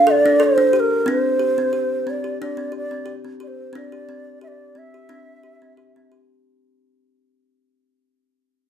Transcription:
Already playing: F5
0.07 A4 D5
0.26 D4
0.40 A4 C5
0.58 D4
0.73 G4 C5
0.80 A#4
1.06 C4 D4 C5
1.39 G4
1.58 C4
1.73 G4
2.07 C4 D5
2.24 G4
2.42 D4 D5
2.57 C4
2.72 G4
2.77 D5
2.91 C4
3.06 G4
3.25 C4
3.40 G4 D5
3.48 C5
3.73 C4 D4 D5
3.92 G4
4.09 C4
4.41 G4 E5
4.48 D5
4.75 C4 E5
4.94 G4
5.09 C4 D4
5.43 G4
5.62 C4
5.77 G4
5.96 C4
6.12 G4

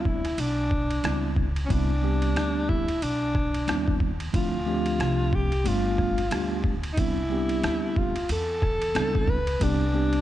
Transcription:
Already playing: D2 G3 B3 C4 D4 E4
0.01 F4
0.05 E4, kick
0.25 cross-stick, ride
0.38 B1 D4, ride
0.71 kick
0.90 ride
1.03 C#2 G3 B3 C4 D4 E4, cross-stick, hi-hat pedal, ride
1.36 kick
1.56 ride
1.66 G3 B3 C4 C#4
1.70 C2 D4 E4, kick, ride
2.02 G3 B3 C4 D4 G4
2.22 ride
2.36 D2, cross-stick, hi-hat pedal, ride
2.69 E4, kick
2.88 ride
3.02 B1 D4, ride
3.35 kick, cross-stick
3.54 ride
3.67 D#2 G3 B3 C4 D4 E4, cross-stick, hi-hat pedal, ride
3.88 kick
4.00 kick
4.20 ride
4.33 D2 F3 A3 C4 D4 E4 F4, kick, ride
4.66 F3 A3 C4 D4 G4
4.86 ride
4.99 C2, cross-stick, hi-hat pedal, ride
5.33 G4, kick
5.52 ride
5.64 G1 G3 A3 B3 D4 F4, ride
5.98 kick, cross-stick
6.18 ride
6.31 D2 G3 A3 B3 D4 G4, cross-stick, hi-hat pedal, ride
6.64 kick
6.83 ride
6.93 G3 D#4
6.97 C2 B3 C4 D4 E4, kick, ride
7.29 G3 B3 C4 D4 G4
7.49 ride
7.63 D2, cross-stick, hi-hat pedal, ride
7.96 F4, kick
8.16 ride
8.29 E2 A4, ride
8.62 kick, cross-stick
8.82 ride
8.94 C#2 G3 B3 C4 D4 E4, cross-stick, hi-hat pedal, ride
9.15 kick
9.28 B4, kick
9.47 ride
9.60 C2 G3 B3 C4 D4 G4, kick, ride
9.93 G3 B3 C4 D4 G4
10.13 ride

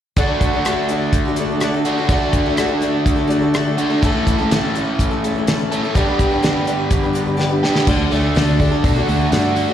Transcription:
0.16 D3 A3 D4 F#4 A4, kick, closed hi-hat
0.41 kick, closed hi-hat
0.53 D4 F#4 A4
0.65 D3 A3 D4 F#4 A4, cross-stick, closed hi-hat
0.89 A3 D4 F#4 A4, closed hi-hat
1.13 kick, closed hi-hat
1.25 D4 F#4 A4
1.36 A3 D4, closed hi-hat
1.41 F#4 A4
1.50 D4 F#4 A4
1.60 D3 A3 D4 F#4 A4, cross-stick, closed hi-hat
1.74 D4 F#4 A4
1.85 D3 A3 D4 F#4, closed hi-hat
1.98 D4 F#4 A4
2.09 D3 A3 D4 F#4 A4, kick, closed hi-hat
2.33 kick, closed hi-hat
2.46 D4 F#4 A4
2.57 D3 A3 D4 F#4 A4, cross-stick, closed hi-hat
2.69 D4 F#4 A4
2.80 A3 D4 F#4 A4, closed hi-hat
3.06 kick, closed hi-hat
3.16 D4 F#4 A4
3.27 A3 D4 F#4 A4, closed hi-hat
3.41 D4 F#4 A4
3.54 D3 A3 D4 F#4 A4, cross-stick, closed hi-hat
3.65 D4 F#4 A4
3.78 D3 A3 D4 F#4, closed hi-hat
3.90 D4 F#4 A4
4.02 A2 E3 A3 C#4 E4 A4, kick, closed hi-hat
4.27 kick, closed hi-hat
4.38 A3 C#4 E4 A4
4.51 A2 E3 A3 C#4 E4 A4, snare, closed hi-hat
4.75 A3 C#4 E4 A4, closed hi-hat
4.99 kick, closed hi-hat
5.11 A3 C#4 E4 A4
5.24 A3 C#4 E4 A4, closed hi-hat
5.36 A3 C#4 E4 A4
5.47 A2 E3 A3 C#4 E4 A4, snare, closed hi-hat
5.59 A3 C#4 E4 A4
5.72 A2 E3 A3 C#4 A4, closed hi-hat
5.83 A3 C#4 E4 A4
5.95 G2 D3 G3 B3 D4 G4 B4, kick, closed hi-hat
6.19 kick, closed hi-hat
6.31 D4 G4 B4
6.42 G3 D4 G4 B4, snare, closed hi-hat
6.65 G3 D4 G4 B4, closed hi-hat
6.91 kick, closed hi-hat
7.03 D4 G4 B4
7.13 G3 D4 G4 B4, closed hi-hat
7.26 D4 G4 B4
7.37 G3 D4 G4 B4, snare
7.49 D4 G4 B4
7.63 G2 D3 G3 B3 D4 G4, snare
7.74 D4 G4 B4, snare
7.87 D2 D3 A3 D4 F#4 A4, kick, crash
8.11 D2 A3 D4 F#4 A4, open hi-hat
8.35 D2 D3 A3 D4 F#4 A4, snare, open hi-hat
8.59 A3 D4 F#4 A4, kick, open hi-hat
8.71 D4 F#4 A4
8.84 B2 F#4, kick, open hi-hat
8.96 D4 F#4 A4
9.07 D2 A3 D4 F#4 A4, open hi-hat
9.32 G2 D3 A3 D4 F#4 A4, snare, open hi-hat
9.56 A3, open hi-hat
9.68 F#4 A4

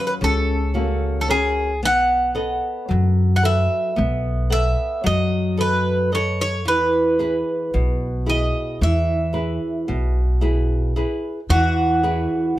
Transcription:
Already playing: F#3 A#3 C#4 F#4
0.07 B4
0.21 C#2 C#3 A4
0.74 A#3 C#4 F#4
1.21 A4
1.28 C#4 F#4 G#4 A#4
1.83 B1 B3 F#5
2.35 A4 B4 D#5
2.89 F#2 F#3
3.36 F#5
3.43 A4 B4 E5 F#5
3.96 B1 B3
4.50 A4 B4 E5 F#5
5.04 F#2 F#3 D#5
5.57 A4 B4 D#5
6.12 A4 B4 C#5 D#5
6.41 C#5
6.65 E2 E3 B4
7.19 E4 G#4 B4
7.74 B1 B2
8.26 E4 G#4 B4 D#5
8.81 E2 E3 E5
9.33 E4 G#4 B4
9.88 B1 B2
10.41 E4 G#4 B4
10.96 E4 G#4 B4
11.49 E2 E3 F#4
12.03 E4 G#4 B4

